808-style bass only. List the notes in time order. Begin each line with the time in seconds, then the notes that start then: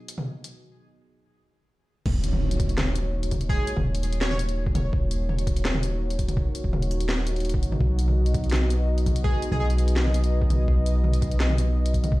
2.06 D#1
3.77 D#1
4.93 D#1
6.64 D#1
7.63 G#1
7.81 B1
9.52 B1
10.68 B1